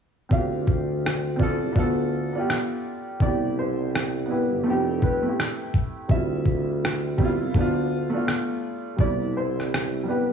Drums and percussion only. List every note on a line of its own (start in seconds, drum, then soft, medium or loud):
0.31 kick loud
0.67 kick medium
1.06 cross-stick medium
1.40 kick medium
1.76 kick medium
2.50 cross-stick loud
3.20 kick loud
3.95 cross-stick loud
5.02 kick medium
5.39 cross-stick loud
5.74 kick medium
6.10 kick loud
6.46 kick medium
6.85 cross-stick loud
7.18 kick medium
7.54 kick medium
8.29 cross-stick loud
8.99 kick loud
9.60 cross-stick soft
9.74 cross-stick loud